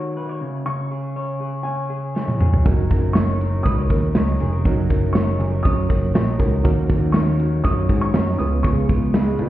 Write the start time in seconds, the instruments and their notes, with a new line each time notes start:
Already playing: clean electric guitar D#3 F#4 C#5, upright piano C#6
0.17 clean electric guitar B4
0.29 clean electric guitar C#5
0.41 clean electric guitar C#3
0.66 clean electric guitar C#3, upright piano C#6
0.91 clean electric guitar G#4
1.16 clean electric guitar C#5
1.40 clean electric guitar G#4
1.63 clean electric guitar C#5, upright piano G#5
1.90 clean electric guitar G#4
2.15 clean electric guitar C#5, snare
2.28 high tom
2.40 clean electric guitar G#4, mid tom
2.53 floor tom
2.65 picked electric bass F#1, clean electric guitar F#3, steel-string acoustic guitar F#3 C#4 D#4 A#4, reed electric piano C#4 D#4 F#4 A#4, kick, ride, tambourine
2.91 steel-string acoustic guitar C#4 D#4 A#4, clean electric guitar A#4, kick, ride, tambourine
3.13 steel-string acoustic guitar F#3 C#4 D#4 A#4, clean electric guitar C#5, upright piano C#6, snare, ride, tambourine
3.41 steel-string acoustic guitar C#4 D#4 A#4, clean electric guitar A#4, ride, tambourine
3.63 picked electric bass C#2, steel-string acoustic guitar F#3 C#4 D#4, clean electric guitar B4, upright piano D#6, kick, ride, tambourine
3.67 steel-string acoustic guitar A#4
3.78 clean electric guitar C#5
3.90 picked electric bass D#2, steel-string acoustic guitar C#4 D#4 A#4, clean electric guitar A#4, kick, ride, tambourine
4.15 picked electric bass C#2, steel-string acoustic guitar F#3 C#4 D#4 A#4, clean electric guitar C#5, snare, ride, tambourine
4.39 picked electric bass F1, steel-string acoustic guitar C#4 D#4 A#4, clean electric guitar G#4, ride, tambourine
4.52 clean electric guitar A#4
4.65 picked electric bass F#1, clean electric guitar F#3, steel-string acoustic guitar F#3 C#4 D#4 A#4, reed electric piano C#4 D#4 F#4 A#4, kick, ride, tambourine
4.90 steel-string acoustic guitar C#4 D#4 A#4, clean electric guitar A#4, kick, ride, tambourine
5.13 steel-string acoustic guitar F#3 C#4 D#4 A#4, clean electric guitar C#5, upright piano C#6, snare, ride, tambourine
5.39 picked electric bass F#1, steel-string acoustic guitar C#4 D#4 A#4, clean electric guitar G#4, ride
5.51 clean electric guitar A#4
5.63 picked electric bass F#2, steel-string acoustic guitar F#3 C#4, clean electric guitar C#5, upright piano D#6, kick, ride, tambourine
5.67 steel-string acoustic guitar D#4 A#4
5.89 picked electric bass F#1, steel-string acoustic guitar C#4 D#4 A#4, clean electric guitar A#4, kick, ride, tambourine
6.14 picked electric bass A#1, steel-string acoustic guitar F#3 C#4 D#4 A#4, clean electric guitar C#5, snare, ride, tambourine
6.38 picked electric bass C#2, reed electric piano C#4 D#4 F#4 A#4, steel-string acoustic guitar C#4 D#4 A#4, clean electric guitar A#4, kick, ride, tambourine
6.63 picked electric bass D#2, clean electric guitar D#3, steel-string acoustic guitar D#3 F#3 C#4 D#4 A#4, reed electric piano C#4 D#4 F#4 A#4, kick, ride, tambourine
6.89 steel-string acoustic guitar C#4 D#4 A#4, clean electric guitar F#4, kick, ride, tambourine
7.12 steel-string acoustic guitar D#3 F#3 C#4 D#4 A#4, clean electric guitar C#5, upright piano C#6, snare, ride, tambourine
7.40 steel-string acoustic guitar C#4 D#4 A#4, clean electric guitar F#4, ride, tambourine
7.64 picked electric bass F#2, steel-string acoustic guitar F#3 C#4 D#4 A#4, clean electric guitar C#5, upright piano D#6, kick, ride, tambourine
7.89 picked electric bass G#2, steel-string acoustic guitar C#4 D#4 A#4, clean electric guitar F#4, kick, ride, tambourine
8.01 upright piano C#6
8.14 picked electric bass F#2, steel-string acoustic guitar D#3 F#3 C#4 D#4 A#4, clean electric guitar C#5, snare, ride, tambourine
8.38 picked electric bass C#2, clean electric guitar C#3, steel-string acoustic guitar B3 F4 G#4, reed electric piano C#4 F4 G#4 B4, upright piano D#6, ride, tambourine
8.63 picked electric bass C#2, steel-string acoustic guitar C#3 G#3 B3 F4 G#4, clean electric guitar C#3, upright piano C#6, kick, ride, tambourine
8.89 steel-string acoustic guitar B3 F4 G#4, clean electric guitar F4, kick, ride, tambourine
9.14 steel-string acoustic guitar C#3 G#3 B3 F4 G#4, clean electric guitar B4, snare, ride, tambourine
9.39 picked electric bass B2, steel-string acoustic guitar B3 F4 G#4, clean electric guitar F4, ride